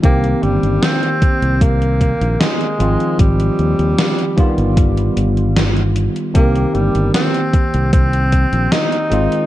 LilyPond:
<<
  \new Staff \with { instrumentName = "Tine electric piano" } { \time 4/4 \key c \phrygian \tempo 4 = 76 <ees bes c' g'>2.~ <ees bes c' g'>8 <ees f c' f'>8~ | <ees f c' f'>4. <ees g b f'>2~ <ees g b f'>8 | <ees bes c' g'>2.~ <ees bes c' g'>8 <ees aes c' f'>8 | }
  \new Staff \with { instrumentName = "Tenor saxophone" } { \time 4/4 \key c \phrygian bes8 g8 c'4 bes4 aes4 | g2 r2 | bes8 g8 c'4 c'4 ees'4 | }
  \new Staff \with { instrumentName = "Fingered electric bass" } { \clef bass \time 4/4 \key c \phrygian c,16 r16 g,,16 g,,16 r8. c,4 bes,,16 r8 aes,,16 r16 | aes,,16 r16 ees,16 ees,16 r8. g,,8. g,,4~ g,,16 r16 | c,16 r16 g,,16 g,,16 r8. c,4 bes,,16 r8 aes,,16 r16 | }
  \new DrumStaff \with { instrumentName = "Drums" } \drummode { \time 4/4 <hh bd>16 hh16 hh16 hh16 <hh sn>16 hh16 <hh bd>16 hh16 <hh bd>16 hh16 <hh bd>16 hh16 <hh sn>16 hh16 hh16 hh16 | <hh bd>16 hh16 hh16 hh16 <hh sn>16 hh16 <hh bd>16 hh16 <hh bd>16 hh16 hh16 hh16 <hh sn>16 hh16 hh16 hh16 | <hh bd>16 hh16 hh16 hh16 <hh sn>16 hh16 <hh bd>16 hh16 <hh bd>16 hh16 <hh bd>16 hh16 <hh sn>16 hh16 hh16 hh16 | }
>>